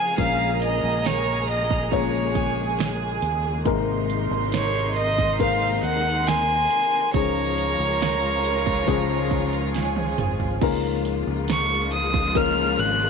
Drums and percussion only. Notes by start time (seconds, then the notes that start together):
0.18 kick, closed hi-hat
0.62 closed hi-hat
1.05 snare, closed hi-hat
1.48 closed hi-hat
1.71 kick
1.92 kick, closed hi-hat
2.35 kick, closed hi-hat
2.79 snare, closed hi-hat
3.22 closed hi-hat
3.65 kick, closed hi-hat
4.10 closed hi-hat
4.52 snare, closed hi-hat
4.96 closed hi-hat
5.19 kick
5.40 kick, closed hi-hat
5.84 closed hi-hat
6.27 snare, closed hi-hat
6.71 closed hi-hat
7.14 kick, closed hi-hat
7.58 closed hi-hat
8.01 snare, closed hi-hat
8.23 closed hi-hat
8.45 closed hi-hat
8.67 kick
8.88 kick, closed hi-hat
9.31 kick, closed hi-hat
9.53 closed hi-hat
9.74 snare, closed hi-hat
9.96 high tom
10.18 closed hi-hat, mid tom
10.40 floor tom
10.61 kick, closed hi-hat, crash
11.05 closed hi-hat
11.48 snare, closed hi-hat
11.92 closed hi-hat
12.14 kick
12.35 kick, closed hi-hat
12.79 closed hi-hat